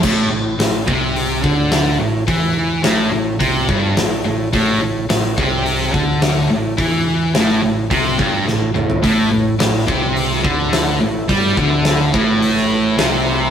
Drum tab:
CC |x---------------|----------------|----------------|----------------|
HH |----o---o---o---|o---o---o---o---|o---o---o---o---|o---o---o-------|
SD |----o-------o---|----o-------o---|----o----o--o---|----o-------o---|
T2 |----------------|----------------|----------------|--------------o-|
FT |----------------|----------------|----------------|---------------o|
BD |o-----o---o-----|o-------o-o-----|o-----o---o-----|o-------o-o-----|

CC |----------------|----------------|
HH |o---o---o---o---|o---o---o---o---|
SD |----o----o--o---|----o----o--o---|
T2 |----------------|----------------|
FT |----------------|----------------|
BD |o-----o---o-----|o-o---o---------|